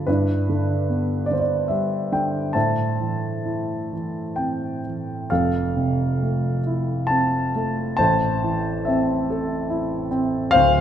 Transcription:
0.07 G2 D4 E4 B4
0.49 D3
0.90 B3
1.26 D5
1.30 D3 C5
1.40 D5
1.68 G3 E5
2.12 D3 G5
2.53 A2 C5 E5 A5
3.00 E3
3.45 E4
3.93 E3
4.36 C4 G5
4.86 E3
5.30 F1 F2 A4 F5
5.77 C3
6.23 A3
6.67 E4
7.07 C4 A5
7.56 A3
7.97 A1 A2 C5 A5
8.44 E3
8.85 C4 C5 E5
9.30 A4
9.70 E4
10.11 C4
10.51 D1 D2 C5 F5

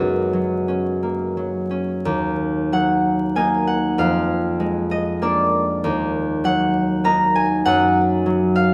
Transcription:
Already playing: F#2 C#4 F#4
0.33 F#3
0.68 C#4
1.03 A#3
1.37 F#3
1.71 C#4
2.05 D#2
2.72 F#3 F#5
3.36 A#3 D#4 G#5
3.67 F#5
3.98 F2 F5
4.60 G#3
4.91 D#5
5.22 A#3 D4 D5
5.84 D#2
6.44 F#3 F#5
7.04 A#3 D#4 A#5
7.36 G#5
7.65 F#2 F#5
8.26 F#3
8.56 F5

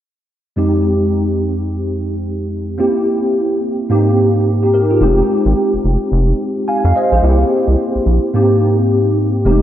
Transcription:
0.56 F2 G#3 C4 D#4 G4
2.78 A#3 C4 E4 G4
3.89 G#2 A#3 C4 D#4 G4
4.63 D#4 G4
4.74 G4 A#4
4.90 F4 G#4
5.00 F1 G#3 C4 D#4 G4
5.45 G#1
5.73 F1
5.84 F1
6.12 F1
6.68 F5 G#5
6.84 F2 F5
6.96 C5 D#5
7.12 A#1 G#4 C5
7.22 C2 A#3 C4 E4 G4
7.68 C2
7.95 A#1
8.06 A#1
8.33 G#2 A#3 C4 D#4 G4
9.45 F1 G#3 C4 D#4 G4

